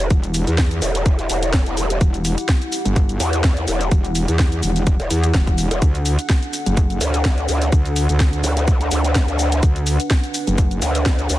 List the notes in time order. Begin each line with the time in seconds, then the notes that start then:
Already playing: E4 G4 F#5, sub drop
0.10 E1, kick, closed hi-hat, shaker
0.23 closed hi-hat, shaker
0.34 open hi-hat, shaker
0.47 E2, closed hi-hat, shaker
0.58 kick, snare, closed hi-hat, shaker
0.71 closed hi-hat, shaker
0.82 E1, open hi-hat, shaker
0.95 closed hi-hat, shaker
1.06 kick, closed hi-hat, shaker
1.19 closed hi-hat, shaker
1.30 E1, open hi-hat, shaker
1.43 closed hi-hat, shaker
1.53 kick, snare, closed hi-hat, shaker
1.66 E1, closed hi-hat, shaker
1.77 open hi-hat, shaker
1.90 closed hi-hat, shaker
2.01 E1, kick, closed hi-hat, shaker
2.14 closed hi-hat, shaker
2.25 open hi-hat, shaker
2.38 closed hi-hat, shaker
2.49 kick, snare, closed hi-hat, shaker
2.62 closed hi-hat, shaker
2.72 open hi-hat, shaker
2.85 G1, closed hi-hat, shaker
2.96 kick, closed hi-hat, shaker
3.09 closed hi-hat, shaker
3.20 E2, open hi-hat, shaker
3.33 closed hi-hat, shaker
3.44 kick, snare, closed hi-hat, shaker
3.57 closed hi-hat, shaker
3.68 E1, open hi-hat, shaker
3.81 closed hi-hat, shaker
3.91 E1, kick, closed hi-hat, shaker
4.05 closed hi-hat, shaker
4.15 open hi-hat, shaker
4.28 E2, closed hi-hat, shaker
4.39 kick, snare, closed hi-hat, shaker
4.52 closed hi-hat, shaker
4.63 E1, open hi-hat, shaker
4.76 closed hi-hat, shaker
4.87 kick, closed hi-hat, shaker
5.00 E1, closed hi-hat, shaker
5.10 E2, open hi-hat, shaker
5.24 closed hi-hat, shaker
5.34 E1, kick, snare, closed hi-hat, shaker
5.47 kick, closed hi-hat, shaker
5.58 open hi-hat, shaker
5.71 E1, closed hi-hat, shaker
5.82 D2 D4 A4, kick, closed hi-hat, shaker
5.95 closed hi-hat, shaker
6.06 open hi-hat, shaker
6.19 closed hi-hat, shaker
6.29 kick, snare, closed hi-hat, shaker
6.43 closed hi-hat, shaker
6.53 open hi-hat, shaker
6.66 F#1, closed hi-hat, shaker
6.77 kick, closed hi-hat, shaker
6.90 closed hi-hat, shaker
7.01 D2, open hi-hat, shaker
7.14 closed hi-hat, shaker
7.25 kick, snare, closed hi-hat, shaker
7.38 closed hi-hat, shaker
7.49 D2, open hi-hat, shaker
7.62 closed hi-hat, shaker
7.72 D2, kick, closed hi-hat, shaker
7.85 closed hi-hat, shaker
7.96 open hi-hat, shaker
8.09 D2, closed hi-hat, shaker
8.20 kick, snare, closed hi-hat, shaker
8.33 closed hi-hat, shaker
8.44 D2, open hi-hat, shaker
8.57 closed hi-hat, shaker
8.68 kick, closed hi-hat, shaker
8.81 closed hi-hat, shaker
8.91 D2, open hi-hat, shaker
9.04 closed hi-hat, shaker
9.15 kick, snare, closed hi-hat, shaker
9.28 D2, closed hi-hat, shaker
9.39 open hi-hat, shaker
9.52 closed hi-hat, shaker
9.63 D2 B4, kick, closed hi-hat, shaker
9.76 closed hi-hat, shaker
9.87 open hi-hat, shaker
10.00 closed hi-hat, shaker
10.10 kick, snare, closed hi-hat, shaker
10.24 closed hi-hat, shaker
10.34 open hi-hat, shaker
10.47 F#1, closed hi-hat, shaker
10.58 kick, closed hi-hat, shaker
10.71 closed hi-hat, shaker
10.82 D2, open hi-hat, shaker
10.95 closed hi-hat, shaker
11.06 kick, snare, closed hi-hat, shaker
11.19 closed hi-hat, shaker
11.30 D2, open hi-hat, shaker